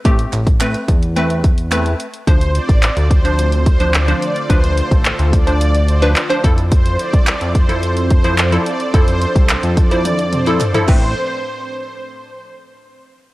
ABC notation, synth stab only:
X:1
M:4/4
L:1/16
Q:1/4=108
K:Ddor
V:1 name="Synth stab"
[A,CG]3 z [A,CB]3 z [A,CB]3 z [A,CB]3 z | [F,Dc]4- [F,Dc] z2 [F,Dc]3 z [F,Dc] z [F,Dc]2 z | [F,DB]4- [F,DB] z2 [F,Dc]3 z [F,DB] z [F,Dc] [F,EA]2- | [F,EA]4 z3 [F,EA]3 z [F,Ec] z [F,EA]2 z |
[F,EA]4- [F,EA] z2 [F,Ec]3 z [F,EA] z [F,EA] [A,CB]2 | z16 |]